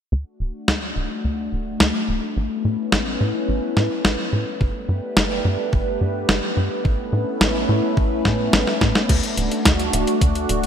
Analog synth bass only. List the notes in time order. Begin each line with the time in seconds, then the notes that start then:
0.12 D2
0.40 D1
0.68 D2
0.96 D1
1.25 D2
1.52 D1
1.80 D2
2.08 D1
2.37 A1
2.65 A2
2.93 A1
3.21 A2
3.49 A1
3.77 A2
4.05 A1
4.33 A2
4.61 G1
4.89 G2
5.17 G1
5.45 G2
5.73 G1
6.01 G2
6.29 G1
6.57 G2
6.85 A1
7.13 A2
7.41 A1
7.69 A2
7.97 A1
8.25 A2
8.53 A1
8.81 A2
9.09 D2
9.37 D1
9.65 D2
9.93 D1
10.21 D2
10.49 D1